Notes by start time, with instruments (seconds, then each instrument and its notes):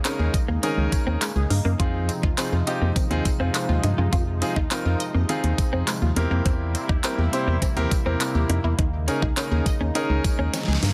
Already playing: analog synth pad C#3 G#3 A#3 D#4
0.05 clean electric guitar C4, grand piano C#4 D#4 G#4 A#4, synth arpeggio sound C#4, clap, closed hi-hat, tambourine
0.19 fm bass D#2, synth arpeggio sound G#4, muted clean electric guitar stroke
0.34 synth arpeggio sound D#5, kick, closed hi-hat, tambourine
0.48 fm bass D#2, clean electric guitar A#3
0.63 synth arpeggio sound D#3, clean electric guitar C4, grand piano C#4 D#4 G#4 A#4, closed hi-hat, tambourine
0.78 fm bass C#2, synth arpeggio sound D#3, muted clean electric guitar stroke
0.92 synth arpeggio sound C#4, kick, closed hi-hat, tambourine
1.07 fm bass D#2, clean electric guitar C4
1.21 clean electric guitar G#3, synth arpeggio sound C#4, clap, closed hi-hat, tambourine
1.36 fm bass C#2, synth arpeggio sound G#4
1.50 fm bass G2, synth arpeggio sound A#3, muted clean electric guitar stroke, open hi-hat, tambourine
1.65 fm bass F#2, synth arpeggio sound A#3, clean electric guitar A#3
1.79 fm bass F2, analog synth pad C3 F3 G#3, synth arpeggio sound D#3, grand piano C4 D#4 F4 G#4, clean electric guitar F4, kick, closed hi-hat
2.09 synth arpeggio sound C4, muted clean electric guitar stroke, closed hi-hat, tambourine
2.23 fm bass D#2, clean electric guitar D#4, synth arpeggio sound F4, kick
2.38 grand piano C4 D#4 F4 G#4, synth arpeggio sound C4, clean electric guitar C4, clap, closed hi-hat, tambourine
2.52 fm bass F2, synth arpeggio sound F4, muted clean electric guitar stroke
2.67 grand piano C4 D#4 F4 G4, synth arpeggio sound D#5, closed hi-hat, tambourine
2.82 fm bass F2, clean electric guitar A#3
2.96 synth arpeggio sound D#3, clean electric guitar C4, kick, closed hi-hat, tambourine
3.10 fm bass D#2, synth arpeggio sound D#3, grand piano C4 D#4 F4 G#4, muted clean electric guitar stroke, closed hi-hat
3.25 synth arpeggio sound C4, kick, closed hi-hat, tambourine
3.40 fm bass F2, grand piano C4 D#4 F4 G#4, clean electric guitar C4
3.54 synth arpeggio sound C4, muted clean electric guitar stroke, clap, closed hi-hat, tambourine
3.69 fm bass D#2, synth arpeggio sound F4
3.83 fm bass G2, synth arpeggio sound G#3, clean electric guitar D#4, closed hi-hat, tambourine
3.98 fm bass F#2, synth arpeggio sound G#3, clean electric guitar F4
4.13 fm bass F2, synth arpeggio sound D#3, clean electric guitar F4, kick, closed hi-hat, tambourine
4.42 grand piano C4 D#4 F4 G#4, synth arpeggio sound C4, muted clean electric guitar stroke, closed hi-hat, tambourine
4.56 fm bass D#2, clean electric guitar D#4, synth arpeggio sound F4, kick
4.71 grand piano C4 D#4 F4 A#4, synth arpeggio sound C4, clean electric guitar C4, clap, closed hi-hat, tambourine
4.85 fm bass F2, synth arpeggio sound F4, muted clean electric guitar stroke
5.00 synth arpeggio sound D#5, closed hi-hat, tambourine
5.15 fm bass F2, clean electric guitar A#3
5.29 synth arpeggio sound D#3, grand piano C4 D#4 F4 G#4, clean electric guitar C4, closed hi-hat, tambourine
5.44 fm bass D#2, synth arpeggio sound D#3, muted clean electric guitar stroke, closed hi-hat
5.58 synth arpeggio sound C4, kick, closed hi-hat, tambourine
5.73 fm bass F2, clean electric guitar C4
5.87 clean electric guitar G#3, synth arpeggio sound C4, clap, closed hi-hat, tambourine
6.02 fm bass D#2, synth arpeggio sound F4
6.16 fm bass E2, analog synth pad C3 G3 A#3 E4, synth arpeggio sound A#3, grand piano C4 E4 G4 A#4, muted clean electric guitar stroke, closed hi-hat, tambourine
6.31 fm bass F2, synth arpeggio sound A#3, clean electric guitar A#3
6.46 fm bass E2, synth arpeggio sound E3, clean electric guitar C4, kick, closed hi-hat, tambourine
6.75 synth arpeggio sound C4, muted clean electric guitar stroke, closed hi-hat, tambourine
6.89 fm bass D#2, clean electric guitar D#4, synth arpeggio sound G4, kick
7.04 grand piano C4 E4 G4 A#4, synth arpeggio sound C4, clean electric guitar C4, clap, closed hi-hat, tambourine
7.18 fm bass E2, synth arpeggio sound G4, muted clean electric guitar stroke
7.33 grand piano C4 E4 G4 C5, synth arpeggio sound E5, closed hi-hat, tambourine
7.47 fm bass E2, clean electric guitar A#3
7.62 synth arpeggio sound E3, clean electric guitar C4, kick, closed hi-hat, tambourine
7.76 fm bass D#2, synth arpeggio sound E3, grand piano C4 E4 G4 A#4, muted clean electric guitar stroke, closed hi-hat
7.91 synth arpeggio sound C4, kick, closed hi-hat, tambourine
8.06 fm bass E2, grand piano C4 E4 G4 A#4, clean electric guitar C4
8.20 synth arpeggio sound C4, muted clean electric guitar stroke, clap, closed hi-hat, tambourine
8.35 fm bass D#2, synth arpeggio sound G4
8.49 fm bass F2, synth arpeggio sound A#3, clean electric guitar D#4, closed hi-hat
8.64 fm bass E2, synth arpeggio sound A#3, clean electric guitar E4
8.79 fm bass D#2, analog synth pad C#3 G#3 D#4, synth arpeggio sound D#3, clean electric guitar D#4, kick, closed hi-hat
9.08 grand piano C#4 D#4 G#4 A#4, synth arpeggio sound C#4, muted clean electric guitar stroke, closed hi-hat, tambourine
9.22 fm bass C#2, clean electric guitar D#4, synth arpeggio sound G#4, kick
9.37 grand piano C#4 D#4 G#4 A#4, synth arpeggio sound C#4, clean electric guitar C#4, clap, closed hi-hat, tambourine
9.51 fm bass D#2, synth arpeggio sound G#4, muted clean electric guitar stroke
9.66 synth arpeggio sound D#5, kick, closed hi-hat, tambourine
9.81 fm bass D#2, clean electric guitar C#4
9.95 synth arpeggio sound D#3, grand piano C#4 D#4 G#4 A#4, clean electric guitar D#4, closed hi-hat, tambourine
10.10 fm bass C#2, synth arpeggio sound D#3, muted clean electric guitar stroke
10.24 synth arpeggio sound C#4, kick, closed hi-hat, tambourine
10.39 fm bass D#2, clean electric guitar C#4
10.53 clean electric guitar C4, synth arpeggio sound C#4, snare, closed hi-hat, tambourine
10.63 snare
10.68 fm bass C#2, synth arpeggio sound G#4
10.73 snare
10.82 fm bass G2, synth arpeggio sound A#3, muted clean electric guitar stroke, snare, open hi-hat, tambourine